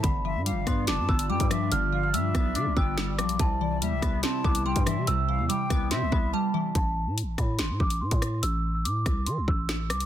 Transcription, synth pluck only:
X:1
M:4/4
L:1/8
Q:1/4=143
K:Am
V:1 name="Synth pluck" clef=bass
D, F, G, B, D B, G, F, | D, F, G, B, D B, G, F, | C, E, G, B, C B, G, E, | C, E, G, B, C B, G, E, |
z8 | z8 |]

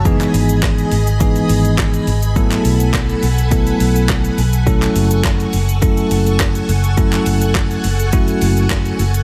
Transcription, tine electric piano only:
X:1
M:4/4
L:1/8
Q:1/4=104
K:F#dor
V:1 name="Tine electric piano"
[E,G,B,DG]3 z [E,G,B,DG]3 z | [F,A,B,EA]3 z [F,A,B,EA]3 z | [F,A,CEA]3 z [F,A,CEA]3 z | [F,A,CEA]3 z [F,A,CEF]3 z |]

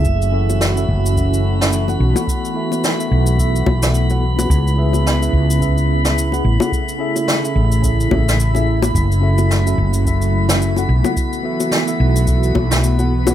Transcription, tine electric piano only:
X:1
M:4/4
L:1/16
Q:"Swing 16ths" 1/4=108
K:F#m
V:1 name="Tine electric piano"
z2 [CEFAe]3 [CEFAe]3 [CEFAe]3 [CEFAe]2 [CEFAf] z [B,EFAf]- | [B,EFAf]2 [B,EFAe]3 [B,EFAe]3 [B,EFAe]3 [B,EFAe]2 [B,EFAf] z [CEGBf]- | [CEGBf]2 [CEGBe]3 [CEGBe]3 [CEGBe]3 [CEGBe]2 [CEGBf] z [CEGAf]- | [CEGAf]2 [CEGAe]3 [CEGAe]3 [CEGAe]2 [CEGAe]2 z [CEGAe]2 z |
z2 [CEFAe]3 [CEFAe]3 [CEFAe]3 [CEFAe]2 [CEFAf] z [B,EFAf]- | [B,EFAf]2 [B,EFAe]3 [B,EFAe]3 [B,EFAe]3 [B,EFAe]2 [B,EFAf] z [CEGBf] |]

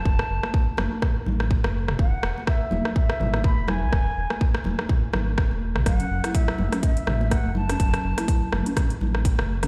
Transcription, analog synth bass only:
X:1
M:4/4
L:1/16
Q:"Swing 16ths" 1/4=124
K:F#m
V:1 name="Analog synth bass" clef=bass
F,,, z F,,, z3 F,,, z3 A,,,3 F,,,2 E,,, | E,,, z E,,, z3 E,,, z3 G,,,3 E,,,2 B,,, | E,,, z E,,, z3 E,,, z3 G,,,3 E,,,2 B,,, | F,,, z F,,, z3 F,,, z3 A,,,3 F,,,2 E,,, |
F,,, z F,,, z3 F,,, z3 A,,,3 F,,,2 E,,, |]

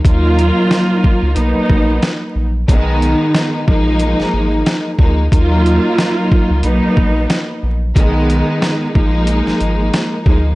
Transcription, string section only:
X:1
M:4/4
L:1/8
Q:"Swing 16ths" 1/4=91
K:Ebm
V:1 name="String section"
[G,B,EF]4 [^F,^A,=B,^D]3 z | [E,A,CE]3 [F,A,B,E]4 [F,A,B,E] | [G,B,EF]4 [^F,^A,=B,^D]3 z | [E,A,CE]3 [F,A,B,E]4 [F,A,B,E] |]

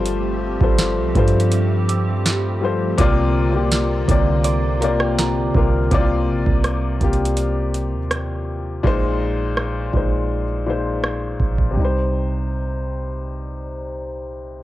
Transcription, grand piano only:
X:1
M:4/4
L:1/16
Q:1/4=82
K:Cm
V:1 name="Grand piano"
[G,F=Ac]2 z [G,FAc]2 z [G,FAc]4- [G,FAc] z3 [G,FAc] z | [C,B,Fd]2 z [C,B,FG]2 z [C,B,Fd]3 z [C,B,Fd]3 z [C,B,FB] z | [C,B,=EFd]4 z2 [C,B,FG]4- [C,B,FG] z4 z | [B,,A,Ec]4 z2 [B,,A,Ec]3 z [B,,A,Ec]4 z2 |
[C,G,Ec]16 |]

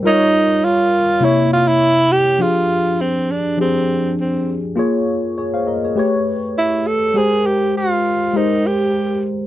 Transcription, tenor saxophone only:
X:1
M:4/4
L:1/16
Q:"Swing 16ths" 1/4=101
K:Ablyd
V:1 name="Tenor saxophone"
E4 F4 =E2 F E3 G2 | F4 C2 D2 C4 C3 z | z12 =E2 =A2 | A2 G2 F4 E2 G4 z2 |]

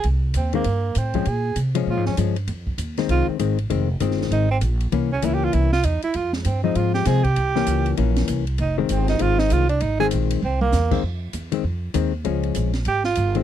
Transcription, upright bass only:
X:1
M:4/4
L:1/8
Q:"Swing" 1/4=197
K:Fm
V:1 name="Upright bass" clef=bass
C,,2 E,,2 G,,2 =A,,2 | B,,2 C,2 (3B,, A,, F,, G,,2 | F,,2 E,,2 C,, z A,,,2 | F,,,2 G,,,2 A,,,2 B,,,2 |
C,,2 D,,2 C,,2 =E,, z | F,,2 G,,2 A,,2 C,2 | C,,2 D,,2 B,,,2 C,,2 | F,,,2 G,,,2 A,,,2 C,,2 |
A,,,2 B,,,2 C,,2 =E,,2 | F,,2 =E,,2 F,,2 _E,,2 | D,,2 B,,,2 A,,,2 G,,,2 |]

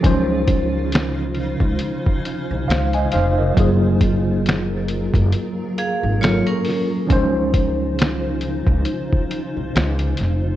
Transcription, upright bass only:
X:1
M:4/4
L:1/16
Q:"Swing 16ths" 1/4=68
K:Db
V:1 name="Upright bass" clef=bass
D,,6- D,, D,, z3 C,, D,,2 F,,,2 | G,,,6- G,,, G,,, z3 A,,,2 z3 | D,,6- D,, D,, z3 C,, D,,2 F,,,2 |]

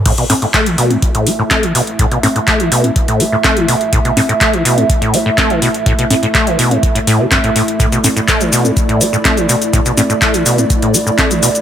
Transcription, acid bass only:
X:1
M:4/4
L:1/16
Q:1/4=124
K:C
V:1 name="Acid bass" clef=bass
A,, B,, A,, A,, A, E, B,, A,, z A,, A, A,, A, E, B,, z | A,, B,, A,, A,, A, E, B,, A,, z A,, A, A,, A, E, B,, z | A,, B,, A,, A,, A, E, B,, A,, z A,, A, A,, A, E, B,, z | A,, B,, A,, A,, A, E, B,, A,, z A,, A,, C, G,, A,, A,, z |
A,, B,, A,, A,, A, E, B,, A,, z A,, A, A,, A, E, B,, z | A,, B,, A,, A,, A, E, B,, A,, z A,, A, A,, A, E, B,, z |]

